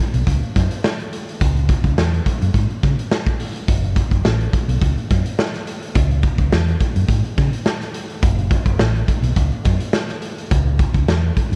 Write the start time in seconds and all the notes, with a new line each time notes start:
0.14 B1, closed hi-hat
0.27 C#2, kick, closed hi-hat
0.43 closed hi-hat
0.56 F#2, kick, snare, closed hi-hat
0.71 closed hi-hat
0.84 snare
1.00 closed hi-hat
1.13 closed hi-hat
1.29 closed hi-hat
1.41 C#2, kick, closed hi-hat
1.56 closed hi-hat
1.69 kick, closed hi-hat
1.84 C#2, kick, closed hi-hat
1.98 E2, snare
2.14 closed hi-hat
2.26 kick, closed hi-hat
2.42 F#2, closed hi-hat
2.54 G#2, kick, closed hi-hat
2.70 closed hi-hat
2.83 C#3, kick, snare, closed hi-hat
2.99 closed hi-hat
3.11 snare
3.26 kick, snare, closed hi-hat
3.40 open hi-hat
3.56 closed hi-hat
3.68 F#1, kick, closed hi-hat
3.84 closed hi-hat
3.96 kick, closed hi-hat
4.11 F#1, kick, closed hi-hat
4.25 A1, snare
4.41 closed hi-hat
4.53 kick, closed hi-hat
4.68 B1, closed hi-hat
4.81 C#2, kick, closed hi-hat
4.98 closed hi-hat
5.11 F#2, kick, snare, closed hi-hat
5.26 closed hi-hat
5.39 snare
5.54 snare, closed hi-hat
5.67 closed hi-hat
5.82 closed hi-hat
5.95 C#2, kick, closed hi-hat
6.11 closed hi-hat
6.23 kick, closed hi-hat
6.38 C#2, kick, closed hi-hat
6.52 E2, snare
6.68 closed hi-hat
6.80 kick, closed hi-hat
6.96 F#2, closed hi-hat
7.08 G#2, kick, closed hi-hat
7.24 closed hi-hat
7.38 C#3, kick, snare, closed hi-hat
7.53 closed hi-hat
7.66 snare
7.81 snare, closed hi-hat
7.94 closed hi-hat
8.10 closed hi-hat
8.22 F#1, kick, closed hi-hat
8.38 closed hi-hat
8.51 kick, closed hi-hat
8.66 F#1, kick, closed hi-hat
8.79 A1, snare
8.95 closed hi-hat
9.08 kick, closed hi-hat
9.22 B1, closed hi-hat
9.36 C#2, kick, closed hi-hat
9.52 closed hi-hat
9.65 F#2, kick, snare, closed hi-hat
9.80 closed hi-hat
9.93 snare
10.09 snare, closed hi-hat
10.22 closed hi-hat
10.38 closed hi-hat
10.51 C#2, kick, closed hi-hat
10.79 kick, closed hi-hat
10.94 C#2, kick, closed hi-hat
11.08 E2, snare
11.37 kick, closed hi-hat
11.52 F#2